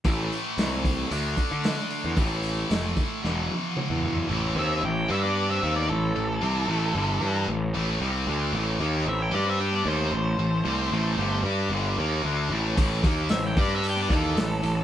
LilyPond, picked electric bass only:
\new Staff \with { instrumentName = "Picked electric bass" } { \clef bass \time 4/4 \key a \minor \tempo 4 = 113 a,,8 r8 c,4 d,8 r16 d8 r8 e,16 | a,,4 f,,8 r8 e,,8 r8. e,8. | a,,8 dis,8 a,,8 g,4 dis,8 a,,8 a,,8 | c,8 a,,8 g,,8 g,8 a,,8 a,,8 c,8 d,8 |
a,,8 dis,8 a,,8 g,4 dis,8 a,,8 a,,8 | c,8 a,,8 g,,8 g,8 g,,8 dis,8 d,8 a,,8 | a,,8 dis,8 a,,8 g,4 dis,8 a,,8 a,,8 | }